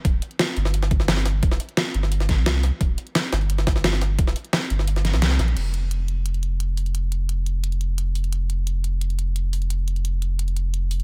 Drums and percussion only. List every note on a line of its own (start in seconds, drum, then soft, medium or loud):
0.05 kick loud
0.05 closed hi-hat medium
0.22 closed hi-hat medium
0.31 closed hi-hat soft
0.39 snare loud
0.39 closed hi-hat medium
0.48 closed hi-hat soft
0.57 closed hi-hat medium
0.65 snare medium
0.74 closed hi-hat medium
0.83 snare medium
0.83 closed hi-hat soft
0.91 kick loud
0.91 closed hi-hat medium
1.00 snare soft
1.08 snare loud
1.08 closed hi-hat medium
1.17 snare medium
1.25 snare medium
1.25 closed hi-hat medium
1.25 open hi-hat medium
1.43 kick loud
1.43 closed hi-hat medium
1.51 snare medium
1.60 closed hi-hat medium
1.69 closed hi-hat soft
1.77 snare loud
1.77 closed hi-hat medium
1.94 closed hi-hat medium
2.03 snare soft
2.12 closed hi-hat medium
2.20 snare soft
2.20 closed hi-hat soft
2.29 kick loud
2.29 snare soft
2.29 closed hi-hat medium
2.46 snare loud
2.46 closed hi-hat medium
2.63 snare soft
2.63 closed hi-hat medium
2.63 open hi-hat medium
2.81 kick loud
2.81 closed hi-hat medium
2.98 closed hi-hat medium
3.07 closed hi-hat soft
3.15 snare loud
3.15 closed hi-hat medium
3.24 closed hi-hat soft
3.32 snare loud
3.32 closed hi-hat medium
3.41 closed hi-hat soft
3.50 closed hi-hat medium
3.50 closed hi-hat loud
3.58 snare soft
3.58 closed hi-hat soft
3.67 kick loud
3.67 snare loud
3.67 closed hi-hat medium
3.76 snare medium
3.84 snare loud
3.84 closed hi-hat medium
3.93 snare medium
4.01 snare medium
4.01 closed hi-hat medium
4.01 open hi-hat medium
4.19 kick loud
4.19 closed hi-hat loud
4.19 closed hi-hat medium
4.27 snare medium
4.36 closed hi-hat medium
4.45 closed hi-hat soft
4.53 snare loud
4.53 closed hi-hat medium
4.70 closed hi-hat medium
4.79 snare soft
4.87 closed hi-hat loud
4.87 closed hi-hat medium
4.96 snare soft
4.96 closed hi-hat soft
5.05 snare soft
5.05 closed hi-hat medium
5.13 snare medium
5.13 closed hi-hat soft
5.22 snare loud
5.22 closed hi-hat loud
5.22 closed hi-hat medium
5.31 snare soft
5.39 snare soft
5.39 closed hi-hat medium
5.39 open hi-hat medium
5.48 closed hi-hat soft
5.57 closed hi-hat medium
5.57 crash medium
5.74 closed hi-hat medium
5.91 closed hi-hat medium
6.08 closed hi-hat medium
6.26 closed hi-hat medium
6.34 closed hi-hat soft
6.43 closed hi-hat medium
6.60 closed hi-hat medium
6.77 open hi-hat medium
6.86 closed hi-hat soft
6.95 closed hi-hat medium
7.12 closed hi-hat medium
7.29 closed hi-hat medium
7.46 closed hi-hat medium
7.64 closed hi-hat medium
7.72 closed hi-hat soft
7.81 closed hi-hat medium
7.98 closed hi-hat medium
8.15 open hi-hat medium
8.24 closed hi-hat soft
8.32 closed hi-hat medium
8.50 closed hi-hat medium
8.67 closed hi-hat medium
8.84 closed hi-hat medium
9.01 closed hi-hat medium
9.10 closed hi-hat soft
9.19 closed hi-hat medium
9.36 closed hi-hat medium
9.53 open hi-hat medium
9.62 closed hi-hat soft
9.70 closed hi-hat medium
9.88 closed hi-hat medium
9.96 closed hi-hat soft
10.05 closed hi-hat medium
10.22 closed hi-hat medium
10.39 closed hi-hat medium
10.48 closed hi-hat soft
10.57 closed hi-hat medium
10.74 closed hi-hat medium
10.91 open hi-hat medium
11.00 closed hi-hat soft